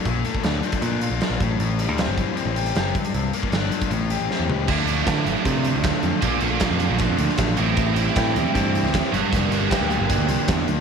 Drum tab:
CC |----------------|----------------|----------------|x---------------|
HH |x-x-x-xxx-x-x-x-|x-x-x-x-x-xxx-xx|x-x-x-xxx-x-----|--x-x-x-x-x-x-x-|
SD |----o-------o---|----o-------o---|----o-------o---|----o-------o---|
FT |----------------|----------------|--------------o-|----------------|
BD |o--o---o------o-|------o-------o-|---o---o--------|o---o---o---o---|

CC |----------------|----------------|----------------|
HH |x-x-x-x-x-x-x-x-|x-x-x-x-x-x-x-x-|x-x-x-x-x-x-x-x-|
SD |----o------oo---|----o------oo---|----o-------o---|
FT |----------------|----------------|----------------|
BD |o---o---o---o---|o---o---o---o---|o---o---o---o---|